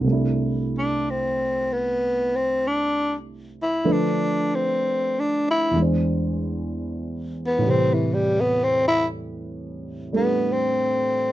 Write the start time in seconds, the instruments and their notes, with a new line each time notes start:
0.01 grand piano C2 C3
0.07 grand piano A3 D4
0.12 grand piano E4
0.78 tenor saxophone D4
1.10 tenor saxophone C4
1.73 tenor saxophone B3
2.36 tenor saxophone C4
2.67 tenor saxophone D4
3.62 tenor saxophone E4
3.84 grand piano D3 F3 A3 D4 B4
3.92 tenor saxophone D4
4.55 tenor saxophone C4
5.19 tenor saxophone D4
5.51 tenor saxophone E4
5.71 grand piano E2 E3
5.76 grand piano G#3 D4
5.82 grand piano C5
7.47 tenor saxophone B3
7.58 grand piano A2 E3
7.63 grand piano C3 G3
7.69 tenor saxophone C4, grand piano B4
7.94 tenor saxophone E3
8.14 tenor saxophone G3
8.41 tenor saxophone B3
8.64 tenor saxophone C4
8.88 tenor saxophone E4
10.12 grand piano G3 A3 D4 A4
10.17 tenor saxophone B3
10.53 tenor saxophone C4